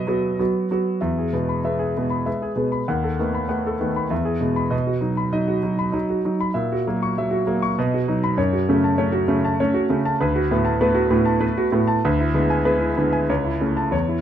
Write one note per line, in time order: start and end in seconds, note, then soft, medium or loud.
0.00 0.42 B2 medium
0.00 0.07 F#3 soft
0.00 0.08 B3 soft
0.00 0.08 F#4 medium
0.00 0.39 D#5 medium
0.00 0.42 E5 medium
0.07 0.36 F#3 soft
0.07 0.37 B3 soft
0.07 0.37 F#4 soft
0.39 0.68 F#3 soft
0.39 0.68 B3 soft
0.39 0.69 F#4 soft
0.71 1.00 F#3 soft
0.71 1.00 B3 soft
0.71 1.00 F#4 soft
1.01 1.33 E2 soft
1.01 1.27 E5 soft
1.18 1.43 G#4 soft
1.33 1.59 B2 soft
1.33 1.62 G#3 soft
1.33 1.62 B3 soft
1.49 1.74 B5 soft
1.64 1.93 G#3 soft
1.64 1.93 B3 soft
1.64 1.90 E5 soft
1.79 2.05 G#4 soft
1.97 2.21 B2 soft
1.97 2.24 G#3 soft
1.97 2.25 B3 soft
2.10 2.36 B5 soft
2.26 2.54 G#3 soft
2.26 2.55 B3 soft
2.26 2.51 E5 soft
2.42 2.67 G#4 soft
2.56 2.81 B2 soft
2.56 2.85 G#3 soft
2.56 2.85 B3 soft
2.72 2.88 B5 soft
2.88 3.18 D#2 medium
2.88 3.13 F#5 soft
3.04 3.29 A4 soft
3.19 3.44 D#3 soft
3.19 3.47 A3 soft
3.19 3.47 B3 soft
3.35 3.59 B5 soft
3.49 3.77 A3 soft
3.49 3.77 B3 soft
3.49 3.74 F#5 soft
3.67 3.91 A4 soft
3.81 4.05 D#3 soft
3.81 4.09 A3 soft
3.81 4.09 B3 soft
3.96 4.12 B5 soft
4.10 4.41 E2 medium
4.10 4.36 E5 soft
4.25 4.50 G#4 soft
4.41 4.66 B2 soft
4.41 4.69 G#3 soft
4.41 4.69 B3 soft
4.56 4.72 B5 soft
4.71 5.01 B2 medium
4.71 4.96 D#5 soft
4.87 5.12 F#4 soft
5.01 5.30 F#3 soft
5.01 5.30 D#4 soft
5.17 5.42 B5 soft
5.32 5.61 F#3 soft
5.32 5.61 D#4 soft
5.32 5.58 D#5 medium
5.48 5.73 F#4 soft
5.63 5.88 F#3 soft
5.63 5.91 D#4 soft
5.79 6.03 B5 soft
5.92 6.21 F#3 soft
5.92 6.21 D#4 soft
5.92 6.18 D#5 soft
6.09 6.34 F#4 soft
6.25 6.50 F#3 soft
6.25 6.53 D#4 soft
6.41 6.56 B5 soft
6.54 6.84 A#2 medium
6.54 6.79 E5 soft
6.72 6.96 F#4 soft
6.87 7.14 F#3 medium
6.87 7.11 A#3 medium
7.03 7.26 C#6 soft
7.18 7.45 F#3 soft
7.18 7.41 E5 medium
7.31 7.55 F#4 medium
7.47 7.74 F#3 soft
7.47 7.71 A#3 medium
7.62 7.77 C#6 medium
7.79 8.07 B2 medium
7.79 8.03 D#5 soft
7.94 8.18 F#4 medium
8.08 8.35 F#3 medium
8.08 8.36 D#4 soft
8.24 8.38 B5 medium
8.37 8.67 F#2 medium
8.37 8.62 C#5 medium
8.53 8.77 F#4 soft
8.69 8.93 C#3 medium
8.69 8.96 A3 soft
8.69 8.96 C#4 medium
8.84 9.08 A5 medium
8.98 9.26 A3 medium
8.98 9.26 C#4 medium
8.98 9.23 C#5 medium
9.12 9.38 F#4 medium
9.28 9.53 C#3 medium
9.28 9.56 A3 medium
9.28 9.56 C#4 medium
9.45 9.69 A5 medium
9.60 9.88 A3 soft
9.60 9.88 C#4 medium
9.60 9.85 C#5 medium
9.74 9.99 F#4 medium
9.90 10.15 C#3 medium
9.90 10.18 A3 medium
9.90 10.18 C#4 soft
10.05 10.21 A5 medium
10.21 10.51 D2 medium
10.21 10.45 B4 medium
10.35 10.61 F#4 medium
10.51 10.76 A2 medium
10.51 10.79 A3 soft
10.51 10.79 B3 medium
10.65 10.90 A5 medium
10.81 11.09 A3 medium
10.81 11.09 B3 medium
10.81 11.06 B4 medium
10.95 11.20 F#4 medium
11.10 11.36 A2 medium
11.10 11.38 A3 medium
11.10 11.39 B3 soft
11.25 11.51 A5 medium
11.40 11.69 A3 medium
11.40 11.70 B3 soft
11.40 11.67 B4 medium
11.58 11.83 F#4 medium
11.72 11.98 A2 medium
11.72 12.01 A3 soft
11.72 12.01 B3 medium
11.88 12.04 A5 medium
12.05 12.35 D2 medium
12.05 12.30 B4 medium
12.21 12.45 E4 medium
12.34 12.60 D3 medium
12.34 12.64 G#3 soft
12.34 12.63 B3 medium
12.50 12.76 G#5 medium
12.65 12.94 G#3 medium
12.65 12.94 B3 medium
12.65 12.91 B4 medium
12.81 13.07 E4 medium
12.97 13.23 D3 soft
12.97 13.26 G#3 soft
12.97 13.26 B3 soft
13.13 13.29 G#5 soft
13.29 13.60 C#2 medium
13.29 13.55 C#5 soft
13.45 13.71 E4 medium
13.61 13.87 C#3 soft
13.61 13.90 A3 soft
13.61 13.90 C#4 soft
13.77 13.93 A5 medium
13.91 14.21 E2 medium
13.91 14.18 C#5 medium
14.09 14.21 E4 soft